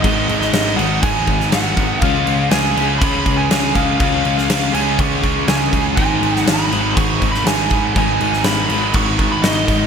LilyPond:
<<
  \new Staff \with { instrumentName = "Lead electric guitar" } { \time 4/4 \key gis \dorian \tempo 4 = 121 dis''8. dis''8. fis''8 gis''4 fis''4 | eis''4 gis''4 b''8. gis''8. eis''8 | eis''8. eis''8. gis''8 cis'''4 gis''4 | gis''4 b''4 cis'''8. b''16 gis''4 |
gis''4 b''4 cis'''8. b''16 dis''4 | }
  \new Staff \with { instrumentName = "Distorted electric guitar" } { \clef bass \time 4/4 \key gis \dorian <gis, dis gis b dis'>8 <gis, dis gis b dis'>8 <gis, dis gis b dis'>8 <gis, dis gis b dis'>8 <gis, dis gis b dis'>8 <gis, dis gis b dis'>8 <gis, dis gis b dis'>8 <gis, dis gis b dis'>8 | <cis gis cis' eis'>8 <cis gis cis' eis'>8 <cis gis cis' eis'>8 <cis gis cis' eis'>8 <cis gis cis' eis'>8 <cis gis cis' eis'>8 <cis gis cis' eis'>8 <cis gis cis' eis'>8 | <cis gis cis' eis'>8 <cis gis cis' eis'>8 <cis gis cis' eis'>8 <cis gis cis' eis'>8 <cis gis cis' eis'>8 <cis gis cis' eis'>8 <cis gis cis' eis'>8 <cis gis cis' eis'>8 | <gis, dis gis b dis'>8 <gis, dis gis b dis'>8 <gis, dis gis b dis'>8 <gis, dis gis b dis'>8 <gis, dis gis b dis'>8 <gis, dis gis b dis'>8 <gis, dis gis b dis'>8 <gis, dis gis b dis'>8 |
<gis, dis gis b dis'>8 <gis, dis gis b dis'>8 <gis, dis gis b dis'>8 <gis, dis gis b dis'>8 <gis, dis gis b dis'>8 <gis, dis gis b dis'>8 <gis, dis gis b dis'>8 <gis, dis gis b dis'>8 | }
  \new Staff \with { instrumentName = "Distorted electric guitar" } { \clef bass \time 4/4 \key gis \dorian <gis, dis gis>4. <gis, dis gis>2~ <gis, dis gis>8 | <cis gis cis'>4. <cis gis cis'>2~ <cis gis cis'>8 | <cis gis cis'>4. <cis gis cis'>2~ <cis gis cis'>8 | <gis, dis gis>4. <gis, dis gis>2~ <gis, dis gis>8 |
<gis, dis gis>4. <gis, dis gis>2~ <gis, dis gis>8 | }
  \new Staff \with { instrumentName = "Overdriven electric guitar" } { \clef bass \time 4/4 \key gis \dorian <gis, dis gis>4. <gis, dis gis>2~ <gis, dis gis>8 | <cis gis cis'>4. <cis gis cis'>2~ <cis gis cis'>8 | <cis gis cis'>4. <cis gis cis'>2~ <cis gis cis'>8 | <gis, dis gis>4. <gis, dis gis>2~ <gis, dis gis>8 |
<gis, dis gis>4. <gis, dis gis>2~ <gis, dis gis>8 | }
  \new Staff \with { instrumentName = "Picked electric bass" } { \clef bass \time 4/4 \key gis \dorian gis,,8 gis,,8 gis,,8 gis,,8 gis,,8 gis,,8 gis,,8 gis,,8 | cis,8 cis,8 cis,8 cis,8 cis,8 cis,8 cis,8 cis,8 | cis,8 cis,8 cis,8 cis,8 cis,8 cis,8 cis,8 cis,8 | gis,,8 gis,,8 gis,,8 gis,,8 gis,,8 gis,,8 gis,,8 gis,,8 |
gis,,8 gis,,8 gis,,8 gis,,8 gis,,8 gis,,8 gis,,8 gis,,8 | }
  \new DrumStaff \with { instrumentName = "Drums" } \drummode { \time 4/4 <cymc bd>8 cymc16 sn16 <cymc sn>8 cymc8 <cymc bd>8 <cymc bd>16 sn16 <cymc sn>8 <cymc bd>8 | <cymc bd>8 cymc8 <cymc sn>8 cymc8 <cymc bd>8 <cymc bd>8 <cymc sn>8 <cymc bd>8 | <cymc bd>8 cymc16 sn16 <cymc sn>8 cymc8 <cymc bd>8 <cymc bd>8 <cymc sn>8 <cymc bd>8 | <cymc bd>8 cymc16 sn16 <cymc sn>8 cymc8 <cymc bd>8 <cymc bd>16 sn16 <cymc sn>8 <cymc bd>8 |
<cymc bd>8 cymc16 sn16 <cymc sn>8 cymc8 <cymc bd>8 <cymc bd>8 <cymc sn>8 <cymc bd>8 | }
>>